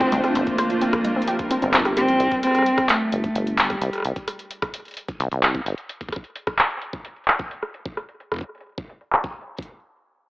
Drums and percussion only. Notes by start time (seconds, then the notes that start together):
0.01 kick, cross-stick, closed hi-hat
0.12 closed hi-hat, low conga
0.24 cross-stick, closed hi-hat
0.35 closed hi-hat
0.47 kick, closed hi-hat
0.58 cross-stick, closed hi-hat
0.70 closed hi-hat
0.81 closed hi-hat
0.93 kick, cross-stick, closed hi-hat
1.05 closed hi-hat, low conga
1.22 closed hi-hat
1.28 closed hi-hat
1.39 kick, closed hi-hat
1.51 closed hi-hat
1.62 closed hi-hat
1.74 cross-stick, clap, closed hi-hat
1.80 kick
1.85 cross-stick, closed hi-hat
1.97 closed hi-hat
2.08 closed hi-hat
2.20 closed hi-hat
2.31 kick, closed hi-hat
2.43 cross-stick, closed hi-hat
2.47 cross-stick
2.51 cross-stick
2.55 cross-stick, closed hi-hat
2.58 cross-stick
2.62 cross-stick, closed hi-hat
2.78 kick, cross-stick, closed hi-hat
2.89 clap, closed hi-hat
3.12 closed hi-hat
3.24 kick, closed hi-hat
3.35 closed hi-hat
3.47 closed hi-hat
3.58 clap, closed hi-hat
3.70 kick, cross-stick, closed hi-hat
3.82 closed hi-hat
3.93 cross-stick, closed hi-hat
3.95 cross-stick
3.98 cross-stick
4.00 cross-stick
4.02 cross-stick, closed hi-hat
4.16 kick, closed hi-hat
4.28 cross-stick, closed hi-hat
4.39 closed hi-hat
4.51 closed hi-hat
4.62 kick, cross-stick, closed hi-hat
4.74 closed hi-hat
4.85 closed hi-hat
4.88 closed hi-hat
4.91 closed hi-hat
4.94 closed hi-hat
4.97 closed hi-hat
5.08 kick, closed hi-hat
5.20 closed hi-hat
5.32 closed hi-hat
5.43 clap, closed hi-hat
5.55 kick, closed hi-hat
5.66 closed hi-hat
5.78 closed hi-hat
5.89 closed hi-hat
6.01 kick, closed hi-hat
6.09 kick, cross-stick, closed hi-hat
6.16 kick
6.24 closed hi-hat
6.36 closed hi-hat
6.47 kick, cross-stick, closed hi-hat
6.59 clap, closed hi-hat
6.70 closed hi-hat
6.82 closed hi-hat
6.93 kick, closed hi-hat
7.05 closed hi-hat
7.16 closed hi-hat
7.24 clap, closed hi-hat
7.28 closed hi-hat
7.39 kick, closed hi-hat
7.51 closed hi-hat
7.63 cross-stick, closed hi-hat
7.74 closed hi-hat
7.86 kick
7.97 cross-stick, closed hi-hat
8.09 closed hi-hat
8.20 closed hi-hat
8.32 kick, cross-stick, closed hi-hat
8.34 kick
8.36 kick
8.39 kick
8.41 kick, closed hi-hat
8.55 closed hi-hat
8.58 closed hi-hat
8.60 closed hi-hat
8.63 closed hi-hat
8.69 closed hi-hat
8.72 closed hi-hat
8.75 kick, closed hi-hat
8.78 closed hi-hat
8.89 closed hi-hat
9.01 closed hi-hat
9.12 clap, closed hi-hat
9.24 kick
9.41 closed hi-hat
9.47 closed hi-hat
9.55 kick, closed hi-hat
9.62 closed hi-hat